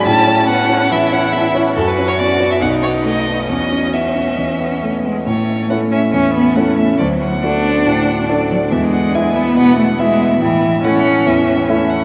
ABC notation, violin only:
X:1
M:4/4
L:1/16
Q:1/4=140
K:A
V:1 name="Violin"
a4 f4 e2 f2 e2 z2 | A B2 c d3 e f2 c2 ^d4 | ^d4 e8 z4 | c4 f2 e2 e4 f2 e2 |
d2 f6 f4 d4 | e2 f2 g2 e2 f4 e4 | e4 f4 e4 e2 f2 |]